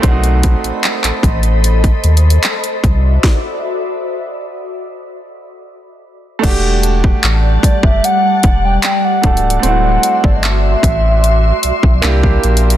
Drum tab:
CC |------------------------------------------------|------------------------------------------------|x-----------------------------------------------|------------------------------------------------|
HH |x--x--x--x--x--x--x--x--x--x--x-x-x-x--x--x-----|------------------------------------------------|x-----x-----x-----x-----x-----x-----x-----x-x-x-|x-----x-----x-----x-----x-----x-----x-----x-x-x-|
CP |------------x--x--------------------x-----------|------------------------------------------------|------------x-----------------------x-----------|------------x-----------------------x-----------|
SD |------------------------------------------------|o-----------------------------------------------|------------------------------------------------|------------------------------------------------|
BD |o-----o-----------o--------o--------------o-----|o-----------------------------------------------|o--------o--------o--o--------o-----------o-----|---------o--------o--------------o-----o--------|